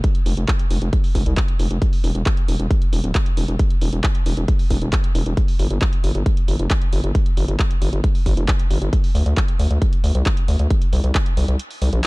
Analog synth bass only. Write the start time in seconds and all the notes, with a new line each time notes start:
0.26 F1
0.37 F1
0.71 F1
0.82 F1
1.15 F1
1.26 C2
1.60 F1
1.71 F1
2.04 E1
2.15 E1
2.48 E1
2.59 E1
2.93 E1
3.04 D1
3.37 E1
3.48 E1
3.82 E1
3.93 E1
4.26 E1
4.37 E1
4.71 E1
4.82 E1
5.15 E1
5.26 E1
5.59 G1
5.71 G1
6.04 G1
6.15 G1
6.48 G1
6.59 F1
6.93 G1
7.04 G1
7.37 G1
7.48 G1
7.82 G1
7.93 G1
8.26 G1
8.37 F1
8.71 G1
8.82 G1
9.15 D2
9.26 D2
9.59 D2
9.71 D2
10.04 D2
10.15 C2
10.48 D2
10.59 D2
10.93 C2
11.04 C2
11.37 C2
11.48 C2
11.82 C2
11.93 A#1